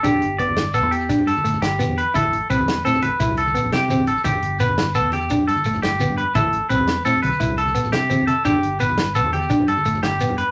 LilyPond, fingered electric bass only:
\new Staff \with { instrumentName = "Fingered electric bass" } { \clef bass \time 12/8 \key g \major \tempo 4. = 114 g,,16 r16 g,,4.~ g,,16 e,8. e,,16 r16 g,16 r16 g,,8 g,,8. e,8 r16 | a,,8 a,,16 r16 c,16 e,8. a,16 r16 a,,16 r16 c,4~ c,16 a,,16 c4 a,,16 r16 | g,,16 r16 g,,4.~ g,,16 e,8. e,,16 r16 g,16 r16 g,,8 g,,8. g,8 r16 | a,,8 a,,16 r16 c,16 e,8. a,16 r16 b,,16 r16 c,4~ c,16 a,,16 c4 c16 r16 |
g,,16 r16 g,,4.~ g,,16 e,8. e,,16 r16 g,16 r16 g,,8 g,,8. g,8 r16 | }